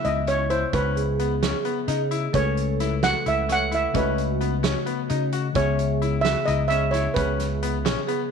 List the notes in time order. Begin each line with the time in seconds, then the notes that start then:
Already playing: C#3 B3 E4 E5
0.05 C#2 E4 D#5, closed hi-hat
0.27 C#4 C#5, closed hi-hat
0.50 E4 C5, closed hi-hat
0.73 C#2 C#4 B4, kick, closed hi-hat
0.96 G#4, closed hi-hat
1.19 B3, closed hi-hat
1.43 C#4, snare, closed hi-hat
1.65 B3, closed hi-hat
1.88 C#3 D#4, closed hi-hat
2.11 E4, closed hi-hat
2.32 C#2 C#3 A3 C#4 A4 B4 C#5, kick, closed hi-hat
2.57 closed hi-hat
2.80 E4, snare, closed hi-hat
3.03 F#4 F#5, snare, closed hi-hat
3.26 C#2 E4 E5, closed hi-hat
3.49 C#4 F#5, snare, closed hi-hat
3.71 E4 E5, closed hi-hat
3.93 C#2 C#3 A3 C#4 F#4 B4 D#5, kick, closed hi-hat
4.18 closed hi-hat
4.41 B3, closed hi-hat
4.63 C#4, snare, closed hi-hat
4.86 B3, closed hi-hat
5.10 C#3 D#4, closed hi-hat
5.32 F#4, closed hi-hat
5.53 C#2 C#3 B3 C#4 G#4 C#5 E5, kick, closed hi-hat
5.79 closed hi-hat
6.02 E4, closed hi-hat
6.21 F#4 E5, snare, closed hi-hat
6.46 C#2 E4 D#5, closed hi-hat
6.68 C#4 E5, closed hi-hat
6.91 E4 C#5, snare, closed hi-hat
7.14 C#2 C#4 B4, kick, closed hi-hat
7.40 snare, closed hi-hat
7.63 B3, closed hi-hat
7.85 C#4, snare, closed hi-hat
8.07 B3 G#4, closed hi-hat